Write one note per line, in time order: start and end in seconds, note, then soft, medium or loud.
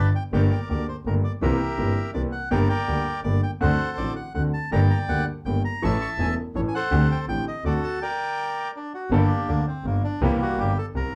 0.00 0.11 G1 medium
0.00 0.11 G2 medium
0.00 0.10 D4 medium
0.00 0.10 G4 medium
0.00 0.11 B4 medium
0.00 0.13 D5 medium
0.15 0.23 G5 medium
0.32 0.48 G1 medium
0.32 0.48 G2 medium
0.32 0.48 D3 medium
0.32 0.48 A3 medium
0.32 0.48 A#3 medium
0.32 0.48 G4 medium
0.32 0.85 A#4 medium
0.32 0.69 D5 medium
0.32 0.42 G5 medium
0.51 0.59 G5 medium
0.69 0.84 D2 medium
0.69 0.85 D2 soft
0.69 0.85 D3 soft
0.69 0.85 A3 soft
0.69 0.85 A#3 soft
0.69 0.85 G4 soft
0.69 0.87 D5 medium
0.88 0.96 C5 medium
1.05 1.21 G1 medium
1.05 1.21 G1 soft
1.05 1.21 G2 medium
1.05 1.21 D3 soft
1.05 1.21 A3 soft
1.05 1.21 A#3 soft
1.05 1.22 G4 soft
1.05 1.15 A#4 medium
1.24 1.32 D5 medium
1.42 1.57 C2 medium
1.42 1.58 C2 medium
1.42 1.58 C3 medium
1.42 1.57 E3 medium
1.42 1.58 A#3 medium
1.42 1.58 C4 medium
1.42 2.11 G4 medium
1.42 1.58 G4 medium
1.42 2.11 A#4 medium
1.42 2.11 E5 medium
1.78 1.93 G1 medium
1.78 1.94 G1 soft
1.78 1.94 G2 soft
1.78 1.94 E3 soft
1.78 1.94 A#3 soft
1.78 1.94 C4 soft
1.78 1.94 G4 soft
2.14 2.30 C2 medium
2.14 2.30 C3 medium
2.14 2.30 E3 soft
2.14 2.30 A#3 soft
2.14 2.30 C4 soft
2.14 2.30 G4 soft
2.14 2.22 D5 medium
2.32 2.49 F#5 medium
2.51 2.66 G1 medium
2.51 2.66 G2 medium
2.51 2.66 D3 medium
2.51 2.66 G3 medium
2.51 2.66 A#3 medium
2.51 2.67 G4 medium
2.51 2.69 A#4 medium
2.51 2.69 D5 medium
2.51 2.59 G5 medium
2.69 3.21 A#4 medium
2.69 3.21 D5 medium
2.69 3.20 G5 medium
2.87 3.03 D2 medium
2.87 3.03 D3 medium
2.87 3.03 G3 soft
2.87 3.03 A#3 soft
2.87 3.03 G4 soft
3.24 3.39 G1 medium
3.24 3.40 G1 medium
3.24 3.40 G2 soft
3.24 3.40 D3 soft
3.24 3.40 G3 soft
3.24 3.40 A#3 soft
3.24 3.40 G4 soft
3.24 3.41 D5 medium
3.43 3.51 G5 medium
3.61 3.76 D2 medium
3.61 3.76 D3 medium
3.61 3.76 A3 medium
3.61 3.76 C4 medium
3.61 3.76 F#4 medium
3.61 4.13 A4 medium
3.61 4.13 C5 medium
3.61 3.99 F#5 loud
3.97 4.13 A1 medium
3.97 4.13 A1 soft
3.97 4.13 A2 soft
3.97 4.13 D3 soft
3.97 4.13 A3 soft
3.97 4.13 C4 soft
3.97 4.14 F#4 soft
3.97 4.15 D5 medium
4.16 4.33 F#5 medium
4.34 4.50 D2 soft
4.34 4.50 D2 medium
4.34 4.50 D3 soft
4.34 4.50 A3 soft
4.34 4.50 C4 soft
4.34 4.50 F#4 soft
4.34 4.43 F#5 medium
4.54 4.71 A5 medium
4.72 4.87 G1 medium
4.72 4.87 G2 medium
4.72 4.87 D3 medium
4.72 4.87 G3 medium
4.72 4.87 A#3 medium
4.72 4.87 G4 medium
4.72 5.24 D5 medium
4.72 5.24 G5 medium
4.72 4.80 A#5 medium
4.90 4.98 A#5 medium
5.08 5.24 D2 medium
5.08 5.24 D3 medium
5.08 5.24 G3 soft
5.08 5.24 A#3 soft
5.08 5.24 G4 soft
5.08 5.26 F#5 loud
5.45 5.61 G1 medium
5.45 5.61 G1 soft
5.45 5.61 G2 medium
5.45 5.61 D3 soft
5.45 5.61 G3 soft
5.45 5.61 A#3 soft
5.45 5.61 G4 soft
5.45 5.63 G5 medium
5.65 5.83 A#5 medium
5.82 5.98 A1 medium
5.82 5.98 A2 medium
5.82 5.98 E3 medium
5.82 5.98 A3 medium
5.82 5.98 C#4 medium
5.82 5.98 A4 medium
5.82 6.35 E5 medium
5.82 6.35 A5 medium
5.82 6.00 C#6 medium
6.02 6.10 C#6 medium
6.18 6.34 E1 medium
6.18 6.35 E2 medium
6.18 6.34 E3 soft
6.18 6.34 A3 soft
6.18 6.34 C#4 soft
6.18 6.35 A4 soft
6.18 6.28 G#5 loud
6.55 6.71 A1 medium
6.55 6.71 A2 soft
6.55 6.71 E3 soft
6.55 6.71 A3 soft
6.55 6.71 C#4 soft
6.55 6.71 A4 soft
6.55 6.61 C#5 medium
6.68 6.74 G#5 medium
6.75 7.26 A4 medium
6.75 7.26 C5 medium
6.75 7.08 F#5 medium
6.91 7.07 D2 medium
6.91 7.07 D3 medium
6.91 7.07 A3 medium
6.91 7.07 C4 medium
6.91 7.07 G4 medium
7.11 7.19 G5 medium
7.28 7.43 A1 medium
7.28 7.43 A2 medium
7.28 7.43 D3 soft
7.28 7.43 A3 soft
7.28 7.43 C4 soft
7.28 7.44 G4 soft
7.28 7.45 G5 loud
7.48 7.64 D#5 medium
7.64 7.79 D2 medium
7.64 7.80 D2 medium
7.64 7.80 D3 medium
7.64 7.80 A3 soft
7.64 7.80 C4 soft
7.64 7.80 F#4 soft
7.64 8.00 F#4 medium
7.64 8.00 A4 medium
7.64 7.73 D5 medium
7.84 8.02 A5 medium
8.02 8.72 A#4 medium
8.02 8.71 D5 medium
8.02 8.71 G5 medium
8.76 8.93 D4 medium
8.94 9.11 F#4 medium
9.11 9.27 G1 medium
9.11 9.27 G2 medium
9.11 9.27 G3 medium
9.11 9.27 A#3 medium
9.11 9.63 A#3 medium
9.11 9.27 D4 medium
9.11 9.48 D4 medium
9.11 9.50 G4 medium
9.11 9.27 A4 medium
9.47 9.63 D2 medium
9.47 9.64 D2 medium
9.47 9.64 D3 medium
9.47 9.66 D4 medium
9.67 9.86 C4 medium
9.84 10.00 G1 medium
9.84 10.00 G2 soft
9.84 10.03 A#3 medium
10.04 10.21 D4 medium
10.21 10.37 C2 loud
10.21 10.37 C2 medium
10.21 10.37 C3 medium
10.21 10.37 E3 medium
10.21 10.73 G3 medium
10.21 10.37 A#3 medium
10.21 10.73 A#3 medium
10.21 10.37 C4 medium
10.21 10.32 E4 medium
10.21 10.37 G4 medium
10.42 10.60 F#4 medium
10.58 10.73 G1 medium
10.58 10.74 G1 medium
10.58 10.74 G2 medium
10.58 10.78 G4 medium
10.78 10.86 A4 medium
10.95 11.10 C2 medium
10.95 11.10 C3 medium
10.95 11.14 A#4 medium